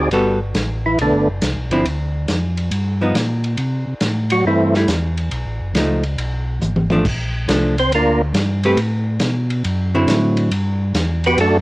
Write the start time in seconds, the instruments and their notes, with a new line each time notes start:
0.11 tonewheel organ G1, hollow-body jazz guitar G3 B3 F#4 A4, ride
0.54 tonewheel organ A1, snare, hi-hat pedal, ride
0.86 tonewheel organ E3 E4
0.98 tonewheel organ B1 D3 A3 B3 D4, ride
1.12 tonewheel organ G1
1.27 tonewheel organ F#1
1.41 tonewheel organ C2, snare, hi-hat pedal, ride
1.56 tonewheel organ B1
1.70 tonewheel organ G1, hollow-body jazz guitar D3 F3 C4 E4, ride
1.84 tonewheel organ D2, ride
2.28 tonewheel organ F2, snare, hi-hat pedal, ride
2.57 ride
2.71 tonewheel organ G2, ride
3.01 hollow-body jazz guitar F3 B3 D#4
3.14 tonewheel organ A#2, snare, hi-hat pedal, ride
3.44 ride
3.57 tonewheel organ C3, ride
3.87 tonewheel organ C3
4.00 tonewheel organ A2, snare, hi-hat pedal, ride
4.30 tonewheel organ F#3 F#4, ride
4.44 tonewheel organ G2 E3 A3 C4 E4
4.74 hollow-body jazz guitar G3 A3 E4, snare
4.87 tonewheel organ E2, snare, hi-hat pedal, ride
5.17 ride
5.31 tonewheel organ B1, ride
5.45 tonewheel organ A1
5.60 tonewheel organ F#1
5.74 tonewheel organ C#2, hollow-body jazz guitar F3 A3 D#4, snare, hi-hat pedal, ride
6.03 ride
6.17 tonewheel organ B1, ride
6.60 tonewheel organ G#1, hi-hat pedal, mid tom
6.76 mid tom
6.90 hollow-body jazz guitar F3 A3 D4, mid tom
7.04 tonewheel organ A#1, kick, crash
7.47 tonewheel organ C2, hollow-body jazz guitar F3 A3 D4, snare, hi-hat pedal, ride
7.78 tonewheel organ C4 C5, ride
7.90 tonewheel organ D2, ride
7.95 tonewheel organ A#3 D4 F4 A#4
8.33 tonewheel organ G2, snare, hi-hat pedal, ride
8.63 hollow-body jazz guitar A3 C4 G4 B4, ride
8.77 tonewheel organ A2, ride
9.20 tonewheel organ B2, snare, hi-hat pedal, ride
9.50 ride
9.64 tonewheel organ F#2, ride
9.95 hollow-body jazz guitar D3 F#3 C4 E4
10.07 tonewheel organ A2, snare, hi-hat pedal, ride
10.37 ride
10.50 tonewheel organ G2, ride
10.94 tonewheel organ E2, snare, hi-hat pedal, ride
11.24 tonewheel organ B3 F#4 G4 B4, ride
11.37 tonewheel organ F#2 A3 D4 F#4 A4, ride